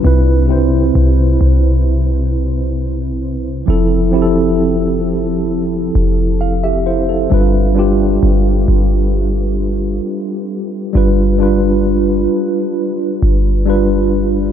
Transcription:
<<
  \new Staff \with { instrumentName = "Tine electric piano" } { \time 4/4 \key g \mixolydian \tempo 4 = 66 << { r1 | r2. <a' f''>16 <g' e''>16 <e' c''>16 <c' a'>16~ | <c' a'>16 r2. r8. | r1 | } \\ { <c c' e' b'>8 <c c' e' c''>4. r2 | <f c' e' a'>8 <f c' e' g' a'>4. r2 | <g d' f' b'>8 <g d' f' g'>4. r2 | <g d' f' b'>8 <g d' f' b'>4. r4 <g d' f' b'>4 | } >> }
  \new Staff \with { instrumentName = "808-style bass" } { \clef bass \time 4/4 \key g \mixolydian c,4 c,8 c,2~ c,8 | f,,2~ f,,8 f,,4. | g,,4 g,,8 g,,4. r4 | g,,4. r4 g,,4. | }
>>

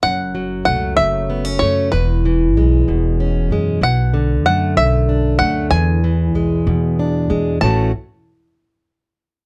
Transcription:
<<
  \new Staff \with { instrumentName = "Five-string banjo" } { \time 6/8 \key a \major \tempo 4. = 63 fis''4 fis''8 e''4 cis''8 | b'2 r4 | fis''4 fis''8 e''4 fis''8 | gis''2~ gis''8 r8 |
a''8 r2 r8 | }
  \new Staff \with { instrumentName = "Steel-string acoustic guitar" } { \clef bass \time 6/8 \key a \major << { r4 a4 b16 cis'16 a8 | r4 gis4 cis'8 gis8 | r4 a4 d'8 a8 | r4 gis4 d'8 gis8 |
<e a cis' fis'>8 r2 r8 | } \\ { fis,8 fis4 cis4. | r8 e4 b,4. | b,8 d4 fis,4. | e,8 e4 b,4. |
a,8 r2 r8 | } >> }
  \new Staff \with { instrumentName = "Upright bass" } { \clef bass \time 6/8 \key a \major fis,,4 cis,8 fis,,4 fis,8 | e,,4 b,,8 e,,4 fis,8 | b,,4 fis,8 b,,4 d,8 | e,4 b,,8 e,4 e,8 |
a,,8 r2 r8 | }
>>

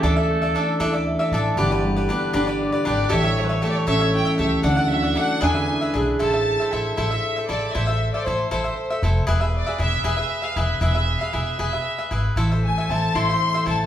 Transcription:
<<
  \new Staff \with { instrumentName = "Violin section" } { \time 6/8 \key d \major \tempo 4. = 78 r2. | r2 r8 d''8 | e''8 cis''32 b'32 cis''16 cis''32 d''32 cis''16 e''8 g''8 e''8 | fis''8 e''8 fis''8 gis''4~ gis''32 r16. |
\key a \minor a''4 e''8 e''4 d''8 | e''8. d''16 c''8 c''4~ c''32 r16. | r8 d''8 e''8 e''8. f''16 e''8 | e''8. f''16 e''8 e''4~ e''32 r16. |
r8 gis''8 a''8 c'''4 a''8 | }
  \new Staff \with { instrumentName = "Cavaquinho" } { \time 6/8 \key d \major <d' a' d'' e''>16 <a' d'' e''>8 <a' d'' e''>16 <d' a' d'' e''>8 <d' a' d'' e''>16 <a' d'' e''>8 <a' d'' e''>16 <d' a' d'' e''>8 | <d' g' b' d''>16 <g' b' d''>8 <g' b' d''>16 <d' g' b' d''>8 <d' g' b' d''>16 <g' b' d''>8 <g' b' d''>16 <d' g' b' d''>8 | <g' a' cis'' e''>16 <a' cis'' e''>8 <a' cis'' e''>16 <g' a' cis'' e''>8 <g' a' cis'' e''>16 <a' cis'' e''>8 <a' cis'' e''>16 <g' a' cis'' e''>8 | <d' a' d'' fis''>16 <a' d'' fis''>8 <a' d'' fis''>16 <d' a' d'' fis''>8 <d' gis' b' e''>16 <gis' b' e''>8 <gis' b' e''>16 <d' gis' b' e''>8 |
\key a \minor <e' a' c'' e''>16 <a' c'' e''>8 <a' c'' e''>16 <e' a' c'' e''>8 <e' a' c'' e''>16 <a' c'' e''>8 <a' c'' e''>16 <e' a' c'' e''>8 | <e' a' c'' e''>16 <a' c'' e''>8 <a' c'' e''>16 <e' a' c'' e''>8 <e' a' c'' e''>16 <a' c'' e''>8 <a' c'' e''>16 <e' a' c'' e''>8 | <e' gis' b' e''>16 <gis' b' e''>8 <gis' b' e''>16 <e' gis' b' e''>8 <e' gis' b' e''>16 <gis' b' e''>8 <gis' b' e''>16 <e' gis' b' e''>8 | <e' gis' b' e''>16 <gis' b' e''>8 <gis' b' e''>16 <e' gis' b' e''>8 <e' gis' b' e''>16 <gis' b' e''>8 <gis' b' e''>16 <e' gis' b' e''>8 |
<e' a' c'' e''>16 <a' c'' e''>8 <a' c'' e''>16 <e' a' c'' e''>8 <e' a' c'' e''>16 <a' c'' e''>8 <a' c'' e''>16 <e' a' c'' e''>8 | }
  \new Staff \with { instrumentName = "Trumpet" } { \time 6/8 \key d \major a'2 r4 | r2. | r2. | r2. |
\key a \minor r2. | r2. | r2. | r2. |
r2. | }
  \new Staff \with { instrumentName = "Harp" } { \time 6/8 \key d \major e8 a8 d'8 e'8 e''8 a''8 | d8 g8 b8 d'8 d''8 g''8 | e8 g8 a8 cis'8 e'8 g'8 | d8 fis8 a8 d'8 e'8 gis'8 |
\key a \minor r2. | r2. | r2. | r2. |
e8 a8 c'8 e'8 e''8 a''8 | }
  \new Staff \with { instrumentName = "Upright bass" } { \clef bass \time 6/8 \key d \major d,4. d,4 a,,8 | g,,4. g,,4 gis,,8 | a,,4. a,,4 cis,8 | d,4. e,4 b,,8 |
\key a \minor a,,4 a,,8 a,,8 r8 a,,8 | a,,4 a,,8 a,,8 r8 f,,8 | e,,4 e,,8 e,,8 r8 e,,8 | e,,4 e,,8 e,,8 r8 gis,,8 |
a,,4 a,,8 a,,8 r8 a,,8 | }
>>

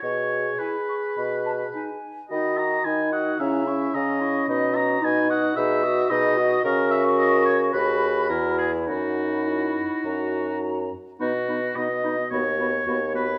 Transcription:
<<
  \new Staff \with { instrumentName = "Flute" } { \time 4/4 \key b \mixolydian \tempo 4 = 108 r4 gis''8 cis'''8 b''8 a''8 gis''4 | \key b \major b''8 dis'''8 b''8 dis'''8 ais''8 cis'''8 ais''8 cis'''8 | b''8 dis'''8 b''8 dis'''8 b''8 dis'''8 b''8 dis'''8 | cis'''2 b''2 |
b''2 ais''4. r8 | b''8 b''8 b''8 b''8 b''8 b''8 b''8 b''8 | }
  \new Staff \with { instrumentName = "Oboe" } { \time 4/4 \key b \mixolydian cis''4 b'2~ b'8 r8 | \key b \major dis''8 ais''8 gis''8 fis''8 e''4 dis''4 | dis''8 ais''8 gis''8 fis''8 e''4 dis''4 | ais'8 e''8 dis''8 cis''8 b'4 ais'8 gis'8 |
fis'2. r4 | fis'4 dis''4 cis''4. b'8 | }
  \new Staff \with { instrumentName = "Clarinet" } { \time 4/4 \key b \mixolydian r4 e'4 r4 dis'4 | \key b \major dis'8 fis'8 dis'8 fis'8 cis'8 e'8 cis'8 e'8 | dis'8 fis'8 dis'8 fis'8 dis'8 fis'8 dis'8 fis'8 | fis'2 fis'4 e'4 |
dis'4 e'4 fis'4. r8 | dis'8 dis'8 dis'8 dis'8 fis'8 fis'8 fis'8 fis'8 | }
  \new Staff \with { instrumentName = "French horn" } { \time 4/4 \key b \mixolydian gis'2.~ gis'8 r8 | \key b \major fis'4 dis'4 e'8 cis'4.~ | cis'4 dis'4 gis'8 fis'8 gis'8 fis'8 | ais'2 gis'4 fis'8 r8 |
dis'2.~ dis'8 r8 | b8 b8 b8 b8 b8 b8 b8 b8 | }
  \new Staff \with { instrumentName = "Bassoon" } { \clef bass \time 4/4 \key b \mixolydian b,4 r4 b,4 r4 | \key b \major dis4 dis4 cis4 cis4 | b,4 b,4 b,4 b,4 | cis2 dis,4 e,4 |
fis,2 fis,4. r8 | b,4 b,4 dis,4 dis,4 | }
>>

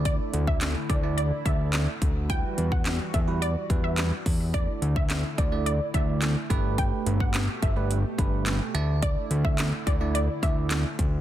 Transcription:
<<
  \new Staff \with { instrumentName = "Synth pluck" } { \time 4/4 \key d \major \tempo 4 = 107 d''8 r16 e''16 r8 d''8 d''8 e''16 r4 r16 | g''8 r16 fis''16 r8 e''8 d''16 r8 e''8 r8. | d''8 r16 e''16 r8 d''8 d''8 e''16 r4 r16 | g''8 r16 fis''16 r8 e''4 r4. |
d''8 r16 e''16 r8 d''8 d''8 e''16 r4 r16 | }
  \new Staff \with { instrumentName = "Tine electric piano" } { \time 4/4 \key d \major <a d' e' d''>4 r8 <e' d''>16 <a d' e' d''>8 r16 <a d' e' d''>8. r8. | <g e' fis' b'>8. r8. <fis' a'>16 <g e' fis' b'>8 r16 <g e' fis' b'>8. r8. | <a d' e' d''>8. r8. <e' d''>16 <a d' e' d''>8 r16 <a d' e' d''>8. r16 <a d' g' b'>8~ | <a d' g' b'>4 r8 <g' a'>16 <a d' g' b'>8 r16 <a d' g' b'>8. r16 <a d' e' d''>8~ |
<a d' e' d''>4 r8 <e' d''>16 <a d' e' d''>8 r16 <a d' e' d''>8. r8. | }
  \new Staff \with { instrumentName = "Analog synth pad" } { \time 4/4 \key d \major << { <d e'>1 | <e fis'>1 | <d e'>2.~ <d e'>8 <b, g'>8~ | <b, g'>2.~ <b, g'>8 <d e'>8~ |
<d e'>1 | } \\ { a1 | g1 | a1~ | a1~ |
a1 | } >> }
  \new Staff \with { instrumentName = "Analog synth bass" } { \clef bass \time 4/4 \key d \major d,8 d,4 d,4 d,4 d,8~ | d,8 e,4 e,4 e,4 e,8~ | e,8 d,4 d,4 d,4 g,,8~ | g,,8 g,,4 g,,4 g,,4 d,8~ |
d,8 d,4 d,4 d,4 d,8 | }
  \new DrumStaff \with { instrumentName = "Drums" } \drummode { \time 4/4 <hh bd>8 hh16 bd16 <hc hh sn>8 <hh bd>8 hh8 <hh bd>8 <hc hh sn>8 <hh bd>8 | <hh bd>8 hh16 bd16 <hc hh sn>8 <hh bd>8 hh8 <hh bd>8 <hc hh sn>8 <hho bd>8 | <hh bd>8 hh16 bd16 <hc hh sn>8 <hh bd>8 hh8 <hh bd>8 <hc hh sn>8 <hh bd>8 | <hh bd>8 hh16 bd16 <hc hh sn>8 <hh bd>8 hh8 <hh bd>8 <hc hh sn>8 hh8 |
<hh bd>8 hh16 bd16 <hc hh sn>8 <hh bd>8 hh8 <hh bd>8 <hc hh sn>8 <hh bd>8 | }
>>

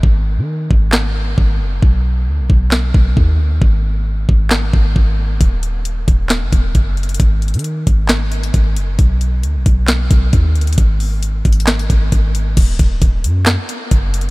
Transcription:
<<
  \new Staff \with { instrumentName = "808-style bass" } { \clef bass \time 4/4 \key ees \minor \tempo 4 = 134 aes,,8. ees8. aes,,4. aes,,8 ges,,8 | b,,4 d,16 b,,16 b,,4 b,,8 dis,8 d,16 dis,16 | aes,,4. aes,,4 aes,,8 aes,,4 | ees,,4. ees,,8. ges,,16 ees,,8 ges,,4 |
aes,,8. ees8. aes,,4. aes,,8 ges,,8 | b,,4 d,16 b,,16 b,,4 b,,8 dis,8 d,16 dis,16 | aes,,4. aes,,4 aes,,8 aes,,4 | ees,,8 ees,,8 ees,,8 ges,8. r8. ges,,4 | }
  \new DrumStaff \with { instrumentName = "Drums" } \drummode { \time 4/4 bd4 r8 bd8 <hc sn>4 bd4 | bd4 r8 bd8 <hc sn>8 bd8 bd4 | bd4 r8 bd8 <hc sn>8 bd8 bd4 | <hh bd>8 hh8 hh8 <hh bd>8 <hc hh sn>8 <hh bd>8 <hh bd>8 hh32 hh32 hh32 hh32 |
<hh bd>8 hh32 hh32 hh32 hh32 hh8 <hh bd>8 <hc hh sn>8 hh16 hh16 <hh bd>8 hh8 | <hh bd>8 hh8 hh8 <hh bd>8 <hc hh sn>8 <hh bd>8 <hh bd>8 hh32 hh32 hh32 hh32 | <hh bd>8 hho8 \tuplet 3/2 { hh16 r16 r16 <hh bd>16 hh16 hh16 } <hc hh sn>16 hh16 <hh bd>8 <hh bd>8 hh8 | <cymc hh bd>8 <hh bd>8 <hh bd>8 hh8 <hc hh sn>8 hh8 \tuplet 3/2 { <hh bd>16 r16 r16 hh16 hh16 r16 } | }
>>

